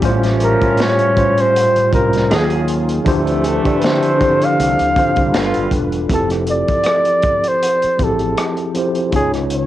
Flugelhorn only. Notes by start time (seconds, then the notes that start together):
0.44 A#4
0.82 C#5
1.41 C5
1.94 A#4
3.42 G#4
3.48 A4
3.79 B4
3.85 C5
4.45 F5
6.14 A4
6.51 D5
7.48 C5
8.03 A4
9.16 G#4
9.54 C#5